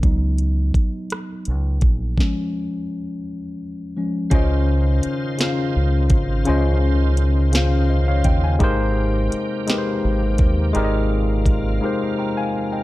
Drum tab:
HH |xxxxxx|------|x-xx-x|x-xx-x|
SD |---r--|o-----|---o--|---o--|
BD |o-o--o|o-----|o----o|-----o|

HH |x-xx-x|x-x---|
SD |---o--|------|
BD |o----o|--o---|